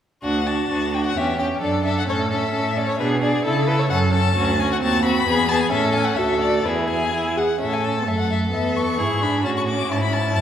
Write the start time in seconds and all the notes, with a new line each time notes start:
0.22 D2 D4 F#4 F#5
0.47 D4 F#4 A5
0.69 D2 D4 F#4
0.93 D4 F#4 G5
1.06 F#5
1.16 E2 C#4 G4 E5
1.38 C#4 G4 G5
1.61 F#2 D4 A4 D5
1.84 D4 A4 E5
1.99 F#5
2.07 A2 C#4 A4 C#5
2.30 C#4 A4 E5
2.53 A2 C#4 A4
2.76 C#4 A4 D5
2.89 C#5
2.99 B2 D4 G#4 B4
3.21 D4 G#4 D5
3.45 C#3 E4 A4
3.67 E4 A4 B4
3.79 C#5
3.90 F#2 C#4 A4 F#5
4.12 C#4 A4 A5
4.36 D2 C#4 F#4
4.59 C#4 F#4 G#5
4.72 F#5
4.81 D#2 C4 F#4 A5
5.04 C4 F#4 B5
5.26 E2 B3 G#4
5.49 B3 G#4 A5
5.61 G#5
5.71 A2 C#4 A4 E5
5.95 G#5
6.05 F#5
6.16 D2 F#4 A4 E5
6.42 D5
6.65 E2 E4 G#4 B4
6.90 G#5
7.13 E4
7.36 G#4 F#5
7.60 A2 C#4 A4 E5
7.73 G#5
7.84 A5
8.07 F#2 A3 A4 E5
8.19 F#5
8.31 E5
8.53 E2 B3 E5
8.76 C#6
8.98 G#2 E4 G#4
9.21 D4 B5
9.44 A2 C#4 F#4 A5
9.57 C#6
9.68 D6
9.90 G#2 E4 A5
10.03 B5
10.13 A5
10.35 F#2 C#4 A5